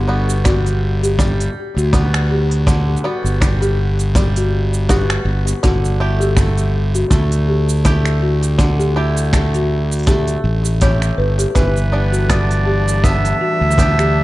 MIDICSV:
0, 0, Header, 1, 8, 480
1, 0, Start_track
1, 0, Key_signature, 1, "major"
1, 0, Tempo, 740741
1, 1730, Time_signature, 4, 2, 24, 8
1, 9225, End_track
2, 0, Start_track
2, 0, Title_t, "Synth texture"
2, 0, Program_c, 0, 99
2, 7491, Note_on_c, 0, 81, 82
2, 9225, Note_off_c, 0, 81, 0
2, 9225, End_track
3, 0, Start_track
3, 0, Title_t, "Clarinet"
3, 0, Program_c, 1, 71
3, 7485, Note_on_c, 1, 71, 99
3, 7972, Note_on_c, 1, 74, 104
3, 7981, Note_off_c, 1, 71, 0
3, 8448, Note_on_c, 1, 76, 121
3, 8457, Note_off_c, 1, 74, 0
3, 9225, Note_off_c, 1, 76, 0
3, 9225, End_track
4, 0, Start_track
4, 0, Title_t, "Marimba"
4, 0, Program_c, 2, 12
4, 295, Note_on_c, 2, 66, 82
4, 420, Note_off_c, 2, 66, 0
4, 670, Note_on_c, 2, 67, 81
4, 768, Note_off_c, 2, 67, 0
4, 1148, Note_on_c, 2, 66, 78
4, 1246, Note_off_c, 2, 66, 0
4, 1496, Note_on_c, 2, 67, 74
4, 1620, Note_off_c, 2, 67, 0
4, 1973, Note_on_c, 2, 66, 72
4, 2099, Note_off_c, 2, 66, 0
4, 2344, Note_on_c, 2, 67, 81
4, 2444, Note_off_c, 2, 67, 0
4, 2834, Note_on_c, 2, 66, 75
4, 2930, Note_off_c, 2, 66, 0
4, 3171, Note_on_c, 2, 67, 88
4, 3298, Note_off_c, 2, 67, 0
4, 3654, Note_on_c, 2, 66, 90
4, 3780, Note_off_c, 2, 66, 0
4, 4019, Note_on_c, 2, 67, 76
4, 4122, Note_off_c, 2, 67, 0
4, 4504, Note_on_c, 2, 66, 81
4, 4604, Note_off_c, 2, 66, 0
4, 4847, Note_on_c, 2, 67, 72
4, 4976, Note_off_c, 2, 67, 0
4, 5328, Note_on_c, 2, 66, 72
4, 5456, Note_off_c, 2, 66, 0
4, 5697, Note_on_c, 2, 67, 76
4, 5801, Note_off_c, 2, 67, 0
4, 6187, Note_on_c, 2, 66, 74
4, 6286, Note_off_c, 2, 66, 0
4, 6529, Note_on_c, 2, 67, 84
4, 6657, Note_off_c, 2, 67, 0
4, 7010, Note_on_c, 2, 73, 80
4, 7087, Note_off_c, 2, 73, 0
4, 7245, Note_on_c, 2, 71, 95
4, 7375, Note_off_c, 2, 71, 0
4, 7378, Note_on_c, 2, 67, 76
4, 7481, Note_off_c, 2, 67, 0
4, 7854, Note_on_c, 2, 66, 70
4, 7960, Note_off_c, 2, 66, 0
4, 8205, Note_on_c, 2, 67, 76
4, 8335, Note_off_c, 2, 67, 0
4, 8691, Note_on_c, 2, 66, 70
4, 8818, Note_off_c, 2, 66, 0
4, 9064, Note_on_c, 2, 67, 75
4, 9164, Note_off_c, 2, 67, 0
4, 9225, End_track
5, 0, Start_track
5, 0, Title_t, "Five-string banjo"
5, 0, Program_c, 3, 105
5, 0, Note_on_c, 3, 50, 81
5, 50, Note_on_c, 3, 55, 60
5, 55, Note_on_c, 3, 59, 59
5, 58, Note_on_c, 3, 66, 68
5, 287, Note_off_c, 3, 55, 0
5, 290, Note_on_c, 3, 55, 65
5, 767, Note_off_c, 3, 55, 0
5, 770, Note_on_c, 3, 55, 68
5, 1245, Note_off_c, 3, 59, 0
5, 1247, Note_off_c, 3, 55, 0
5, 1249, Note_off_c, 3, 66, 0
5, 1250, Note_on_c, 3, 55, 64
5, 1253, Note_on_c, 3, 59, 65
5, 1257, Note_on_c, 3, 66, 65
5, 1722, Note_off_c, 3, 50, 0
5, 1730, Note_on_c, 3, 50, 86
5, 1968, Note_off_c, 3, 55, 0
5, 1968, Note_off_c, 3, 59, 0
5, 1969, Note_off_c, 3, 66, 0
5, 1971, Note_on_c, 3, 55, 62
5, 1976, Note_on_c, 3, 59, 61
5, 1978, Note_on_c, 3, 66, 66
5, 2209, Note_off_c, 3, 55, 0
5, 2211, Note_on_c, 3, 55, 67
5, 2691, Note_off_c, 3, 55, 0
5, 2693, Note_on_c, 3, 55, 71
5, 3166, Note_off_c, 3, 59, 0
5, 3166, Note_off_c, 3, 66, 0
5, 3167, Note_off_c, 3, 55, 0
5, 3169, Note_on_c, 3, 55, 65
5, 3173, Note_on_c, 3, 59, 67
5, 3176, Note_on_c, 3, 66, 71
5, 3641, Note_off_c, 3, 50, 0
5, 3648, Note_on_c, 3, 50, 86
5, 3705, Note_off_c, 3, 59, 0
5, 3706, Note_off_c, 3, 66, 0
5, 3887, Note_off_c, 3, 55, 0
5, 3889, Note_on_c, 3, 57, 63
5, 3894, Note_on_c, 3, 67, 70
5, 3895, Note_on_c, 3, 64, 63
5, 4120, Note_off_c, 3, 57, 0
5, 4128, Note_on_c, 3, 57, 62
5, 4596, Note_off_c, 3, 57, 0
5, 4604, Note_on_c, 3, 57, 74
5, 5078, Note_off_c, 3, 57, 0
5, 5081, Note_off_c, 3, 64, 0
5, 5085, Note_off_c, 3, 67, 0
5, 5085, Note_on_c, 3, 57, 64
5, 5089, Note_on_c, 3, 64, 62
5, 5093, Note_on_c, 3, 67, 68
5, 5555, Note_off_c, 3, 50, 0
5, 5563, Note_on_c, 3, 50, 86
5, 5799, Note_off_c, 3, 57, 0
5, 5807, Note_on_c, 3, 57, 60
5, 5809, Note_off_c, 3, 67, 0
5, 5811, Note_off_c, 3, 64, 0
5, 5811, Note_on_c, 3, 64, 60
5, 5811, Note_on_c, 3, 67, 63
5, 6038, Note_off_c, 3, 57, 0
5, 6046, Note_on_c, 3, 57, 64
5, 6518, Note_off_c, 3, 57, 0
5, 6526, Note_on_c, 3, 57, 73
5, 7000, Note_off_c, 3, 57, 0
5, 7004, Note_off_c, 3, 64, 0
5, 7007, Note_off_c, 3, 67, 0
5, 7008, Note_on_c, 3, 57, 66
5, 7012, Note_on_c, 3, 64, 63
5, 7015, Note_on_c, 3, 67, 70
5, 7482, Note_off_c, 3, 50, 0
5, 7484, Note_on_c, 3, 52, 88
5, 7543, Note_off_c, 3, 57, 0
5, 7726, Note_on_c, 3, 59, 58
5, 7731, Note_off_c, 3, 64, 0
5, 7731, Note_on_c, 3, 62, 64
5, 7734, Note_off_c, 3, 67, 0
5, 7734, Note_on_c, 3, 67, 63
5, 7960, Note_off_c, 3, 59, 0
5, 7968, Note_on_c, 3, 59, 59
5, 8440, Note_off_c, 3, 59, 0
5, 8448, Note_on_c, 3, 59, 70
5, 8922, Note_off_c, 3, 59, 0
5, 8926, Note_off_c, 3, 62, 0
5, 8929, Note_off_c, 3, 67, 0
5, 8930, Note_on_c, 3, 59, 62
5, 8934, Note_on_c, 3, 62, 66
5, 8937, Note_on_c, 3, 67, 72
5, 9225, Note_off_c, 3, 52, 0
5, 9225, Note_off_c, 3, 59, 0
5, 9225, Note_off_c, 3, 62, 0
5, 9225, Note_off_c, 3, 67, 0
5, 9225, End_track
6, 0, Start_track
6, 0, Title_t, "String quartet"
6, 0, Program_c, 4, 48
6, 7485, Note_on_c, 4, 52, 83
6, 7703, Note_on_c, 4, 57, 68
6, 7864, Note_on_c, 4, 62, 75
6, 7978, Note_on_c, 4, 55, 71
6, 9225, Note_off_c, 4, 52, 0
6, 9225, Note_off_c, 4, 55, 0
6, 9225, Note_off_c, 4, 57, 0
6, 9225, Note_off_c, 4, 62, 0
6, 9225, End_track
7, 0, Start_track
7, 0, Title_t, "Fingered electric bass"
7, 0, Program_c, 5, 33
7, 0, Note_on_c, 5, 31, 86
7, 955, Note_off_c, 5, 31, 0
7, 1143, Note_on_c, 5, 38, 88
7, 1914, Note_off_c, 5, 38, 0
7, 2101, Note_on_c, 5, 31, 86
7, 3352, Note_off_c, 5, 31, 0
7, 3402, Note_on_c, 5, 31, 104
7, 3576, Note_off_c, 5, 31, 0
7, 3654, Note_on_c, 5, 31, 93
7, 4556, Note_off_c, 5, 31, 0
7, 4604, Note_on_c, 5, 38, 85
7, 6711, Note_off_c, 5, 38, 0
7, 6764, Note_on_c, 5, 33, 105
7, 7191, Note_off_c, 5, 33, 0
7, 7243, Note_on_c, 5, 31, 98
7, 7417, Note_off_c, 5, 31, 0
7, 7487, Note_on_c, 5, 31, 98
7, 8633, Note_off_c, 5, 31, 0
7, 8821, Note_on_c, 5, 38, 91
7, 9225, Note_off_c, 5, 38, 0
7, 9225, End_track
8, 0, Start_track
8, 0, Title_t, "Drums"
8, 193, Note_on_c, 9, 69, 61
8, 257, Note_off_c, 9, 69, 0
8, 292, Note_on_c, 9, 26, 78
8, 292, Note_on_c, 9, 46, 67
8, 296, Note_on_c, 9, 36, 104
8, 297, Note_on_c, 9, 69, 59
8, 357, Note_off_c, 9, 26, 0
8, 357, Note_off_c, 9, 46, 0
8, 361, Note_off_c, 9, 36, 0
8, 361, Note_off_c, 9, 69, 0
8, 429, Note_on_c, 9, 46, 32
8, 434, Note_on_c, 9, 69, 33
8, 494, Note_off_c, 9, 46, 0
8, 499, Note_off_c, 9, 69, 0
8, 670, Note_on_c, 9, 46, 34
8, 674, Note_on_c, 9, 69, 69
8, 735, Note_off_c, 9, 46, 0
8, 739, Note_off_c, 9, 69, 0
8, 769, Note_on_c, 9, 36, 86
8, 774, Note_on_c, 9, 46, 64
8, 778, Note_on_c, 9, 69, 50
8, 834, Note_off_c, 9, 36, 0
8, 839, Note_off_c, 9, 46, 0
8, 843, Note_off_c, 9, 69, 0
8, 910, Note_on_c, 9, 46, 46
8, 914, Note_on_c, 9, 69, 32
8, 975, Note_off_c, 9, 46, 0
8, 979, Note_off_c, 9, 69, 0
8, 1155, Note_on_c, 9, 69, 58
8, 1220, Note_off_c, 9, 69, 0
8, 1250, Note_on_c, 9, 36, 90
8, 1253, Note_on_c, 9, 46, 64
8, 1257, Note_on_c, 9, 69, 52
8, 1315, Note_off_c, 9, 36, 0
8, 1317, Note_off_c, 9, 46, 0
8, 1322, Note_off_c, 9, 69, 0
8, 1388, Note_on_c, 9, 26, 78
8, 1392, Note_on_c, 9, 69, 34
8, 1452, Note_off_c, 9, 26, 0
8, 1457, Note_off_c, 9, 69, 0
8, 1628, Note_on_c, 9, 46, 44
8, 1693, Note_off_c, 9, 46, 0
8, 1729, Note_on_c, 9, 36, 103
8, 1735, Note_on_c, 9, 46, 65
8, 1739, Note_on_c, 9, 69, 53
8, 1794, Note_off_c, 9, 36, 0
8, 1799, Note_off_c, 9, 46, 0
8, 1804, Note_off_c, 9, 69, 0
8, 1924, Note_on_c, 9, 69, 30
8, 1989, Note_off_c, 9, 69, 0
8, 2112, Note_on_c, 9, 69, 67
8, 2177, Note_off_c, 9, 69, 0
8, 2214, Note_on_c, 9, 36, 112
8, 2215, Note_on_c, 9, 26, 83
8, 2215, Note_on_c, 9, 46, 70
8, 2219, Note_on_c, 9, 69, 57
8, 2279, Note_off_c, 9, 36, 0
8, 2280, Note_off_c, 9, 26, 0
8, 2280, Note_off_c, 9, 46, 0
8, 2284, Note_off_c, 9, 69, 0
8, 2347, Note_on_c, 9, 46, 31
8, 2351, Note_on_c, 9, 69, 35
8, 2412, Note_off_c, 9, 46, 0
8, 2416, Note_off_c, 9, 69, 0
8, 2587, Note_on_c, 9, 46, 31
8, 2591, Note_on_c, 9, 69, 68
8, 2651, Note_off_c, 9, 46, 0
8, 2656, Note_off_c, 9, 69, 0
8, 2690, Note_on_c, 9, 36, 104
8, 2692, Note_on_c, 9, 46, 61
8, 2696, Note_on_c, 9, 69, 53
8, 2755, Note_off_c, 9, 36, 0
8, 2757, Note_off_c, 9, 46, 0
8, 2761, Note_off_c, 9, 69, 0
8, 2827, Note_on_c, 9, 46, 45
8, 2831, Note_on_c, 9, 69, 33
8, 2892, Note_off_c, 9, 46, 0
8, 2896, Note_off_c, 9, 69, 0
8, 3070, Note_on_c, 9, 69, 64
8, 3135, Note_off_c, 9, 69, 0
8, 3171, Note_on_c, 9, 46, 61
8, 3172, Note_on_c, 9, 36, 92
8, 3175, Note_on_c, 9, 69, 57
8, 3235, Note_off_c, 9, 46, 0
8, 3236, Note_off_c, 9, 36, 0
8, 3240, Note_off_c, 9, 69, 0
8, 3304, Note_on_c, 9, 26, 83
8, 3309, Note_on_c, 9, 69, 34
8, 3369, Note_off_c, 9, 26, 0
8, 3373, Note_off_c, 9, 69, 0
8, 3545, Note_on_c, 9, 46, 43
8, 3549, Note_on_c, 9, 69, 70
8, 3610, Note_off_c, 9, 46, 0
8, 3614, Note_off_c, 9, 69, 0
8, 3651, Note_on_c, 9, 46, 64
8, 3654, Note_on_c, 9, 36, 116
8, 3656, Note_on_c, 9, 69, 55
8, 3716, Note_off_c, 9, 46, 0
8, 3719, Note_off_c, 9, 36, 0
8, 3720, Note_off_c, 9, 69, 0
8, 3791, Note_on_c, 9, 69, 32
8, 3856, Note_off_c, 9, 69, 0
8, 4027, Note_on_c, 9, 69, 65
8, 4091, Note_off_c, 9, 69, 0
8, 4125, Note_on_c, 9, 26, 84
8, 4125, Note_on_c, 9, 36, 107
8, 4129, Note_on_c, 9, 69, 60
8, 4190, Note_off_c, 9, 26, 0
8, 4190, Note_off_c, 9, 36, 0
8, 4194, Note_off_c, 9, 69, 0
8, 4260, Note_on_c, 9, 46, 29
8, 4265, Note_on_c, 9, 69, 33
8, 4325, Note_off_c, 9, 46, 0
8, 4329, Note_off_c, 9, 69, 0
8, 4501, Note_on_c, 9, 46, 31
8, 4505, Note_on_c, 9, 69, 76
8, 4566, Note_off_c, 9, 46, 0
8, 4570, Note_off_c, 9, 69, 0
8, 4605, Note_on_c, 9, 46, 59
8, 4606, Note_on_c, 9, 36, 89
8, 4610, Note_on_c, 9, 69, 59
8, 4670, Note_off_c, 9, 46, 0
8, 4671, Note_off_c, 9, 36, 0
8, 4675, Note_off_c, 9, 69, 0
8, 4742, Note_on_c, 9, 46, 41
8, 4746, Note_on_c, 9, 69, 32
8, 4807, Note_off_c, 9, 46, 0
8, 4811, Note_off_c, 9, 69, 0
8, 4985, Note_on_c, 9, 69, 68
8, 5050, Note_off_c, 9, 69, 0
8, 5085, Note_on_c, 9, 46, 59
8, 5088, Note_on_c, 9, 36, 105
8, 5090, Note_on_c, 9, 69, 53
8, 5150, Note_off_c, 9, 46, 0
8, 5153, Note_off_c, 9, 36, 0
8, 5154, Note_off_c, 9, 69, 0
8, 5219, Note_on_c, 9, 26, 78
8, 5224, Note_on_c, 9, 69, 34
8, 5284, Note_off_c, 9, 26, 0
8, 5288, Note_off_c, 9, 69, 0
8, 5461, Note_on_c, 9, 46, 44
8, 5465, Note_on_c, 9, 69, 66
8, 5525, Note_off_c, 9, 46, 0
8, 5530, Note_off_c, 9, 69, 0
8, 5565, Note_on_c, 9, 36, 99
8, 5567, Note_on_c, 9, 46, 59
8, 5571, Note_on_c, 9, 69, 56
8, 5630, Note_off_c, 9, 36, 0
8, 5631, Note_off_c, 9, 46, 0
8, 5636, Note_off_c, 9, 69, 0
8, 5706, Note_on_c, 9, 69, 29
8, 5770, Note_off_c, 9, 69, 0
8, 5941, Note_on_c, 9, 46, 27
8, 5945, Note_on_c, 9, 69, 63
8, 6005, Note_off_c, 9, 46, 0
8, 6010, Note_off_c, 9, 69, 0
8, 6045, Note_on_c, 9, 36, 113
8, 6049, Note_on_c, 9, 26, 78
8, 6049, Note_on_c, 9, 46, 66
8, 6053, Note_on_c, 9, 69, 57
8, 6110, Note_off_c, 9, 36, 0
8, 6113, Note_off_c, 9, 26, 0
8, 6113, Note_off_c, 9, 46, 0
8, 6118, Note_off_c, 9, 69, 0
8, 6183, Note_on_c, 9, 46, 30
8, 6187, Note_on_c, 9, 69, 34
8, 6248, Note_off_c, 9, 46, 0
8, 6252, Note_off_c, 9, 69, 0
8, 6425, Note_on_c, 9, 46, 13
8, 6429, Note_on_c, 9, 69, 64
8, 6449, Note_off_c, 9, 46, 0
8, 6449, Note_on_c, 9, 46, 17
8, 6473, Note_off_c, 9, 46, 0
8, 6473, Note_on_c, 9, 46, 21
8, 6494, Note_off_c, 9, 69, 0
8, 6500, Note_off_c, 9, 46, 0
8, 6500, Note_on_c, 9, 46, 24
8, 6524, Note_off_c, 9, 46, 0
8, 6524, Note_on_c, 9, 46, 60
8, 6527, Note_on_c, 9, 36, 113
8, 6529, Note_on_c, 9, 69, 56
8, 6589, Note_off_c, 9, 46, 0
8, 6591, Note_off_c, 9, 36, 0
8, 6594, Note_off_c, 9, 69, 0
8, 6658, Note_on_c, 9, 46, 42
8, 6662, Note_on_c, 9, 69, 33
8, 6723, Note_off_c, 9, 46, 0
8, 6727, Note_off_c, 9, 69, 0
8, 6901, Note_on_c, 9, 69, 66
8, 6966, Note_off_c, 9, 69, 0
8, 7005, Note_on_c, 9, 46, 64
8, 7009, Note_on_c, 9, 36, 101
8, 7009, Note_on_c, 9, 69, 54
8, 7069, Note_off_c, 9, 46, 0
8, 7074, Note_off_c, 9, 36, 0
8, 7074, Note_off_c, 9, 69, 0
8, 7141, Note_on_c, 9, 26, 72
8, 7141, Note_on_c, 9, 46, 29
8, 7145, Note_on_c, 9, 69, 35
8, 7206, Note_off_c, 9, 26, 0
8, 7206, Note_off_c, 9, 46, 0
8, 7210, Note_off_c, 9, 69, 0
8, 7380, Note_on_c, 9, 46, 44
8, 7384, Note_on_c, 9, 69, 68
8, 7445, Note_off_c, 9, 46, 0
8, 7449, Note_off_c, 9, 69, 0
8, 7488, Note_on_c, 9, 36, 99
8, 7488, Note_on_c, 9, 46, 59
8, 7492, Note_on_c, 9, 69, 55
8, 7553, Note_off_c, 9, 36, 0
8, 7553, Note_off_c, 9, 46, 0
8, 7557, Note_off_c, 9, 69, 0
8, 7626, Note_on_c, 9, 69, 30
8, 7691, Note_off_c, 9, 69, 0
8, 7865, Note_on_c, 9, 69, 65
8, 7929, Note_off_c, 9, 69, 0
8, 7967, Note_on_c, 9, 36, 87
8, 7968, Note_on_c, 9, 26, 77
8, 7968, Note_on_c, 9, 46, 70
8, 7972, Note_on_c, 9, 69, 57
8, 8032, Note_off_c, 9, 36, 0
8, 8033, Note_off_c, 9, 26, 0
8, 8033, Note_off_c, 9, 46, 0
8, 8037, Note_off_c, 9, 69, 0
8, 8104, Note_on_c, 9, 46, 31
8, 8109, Note_on_c, 9, 69, 34
8, 8169, Note_off_c, 9, 46, 0
8, 8173, Note_off_c, 9, 69, 0
8, 8345, Note_on_c, 9, 46, 29
8, 8349, Note_on_c, 9, 69, 72
8, 8410, Note_off_c, 9, 46, 0
8, 8414, Note_off_c, 9, 69, 0
8, 8448, Note_on_c, 9, 36, 94
8, 8453, Note_on_c, 9, 46, 57
8, 8457, Note_on_c, 9, 69, 52
8, 8513, Note_off_c, 9, 36, 0
8, 8517, Note_off_c, 9, 46, 0
8, 8522, Note_off_c, 9, 69, 0
8, 8586, Note_on_c, 9, 46, 42
8, 8590, Note_on_c, 9, 69, 32
8, 8651, Note_off_c, 9, 46, 0
8, 8655, Note_off_c, 9, 69, 0
8, 8885, Note_on_c, 9, 69, 65
8, 8929, Note_on_c, 9, 36, 92
8, 8934, Note_on_c, 9, 46, 63
8, 8938, Note_off_c, 9, 69, 0
8, 8938, Note_on_c, 9, 69, 54
8, 8994, Note_off_c, 9, 36, 0
8, 8998, Note_off_c, 9, 46, 0
8, 9003, Note_off_c, 9, 69, 0
8, 9066, Note_on_c, 9, 26, 74
8, 9070, Note_on_c, 9, 69, 32
8, 9130, Note_off_c, 9, 26, 0
8, 9135, Note_off_c, 9, 69, 0
8, 9225, End_track
0, 0, End_of_file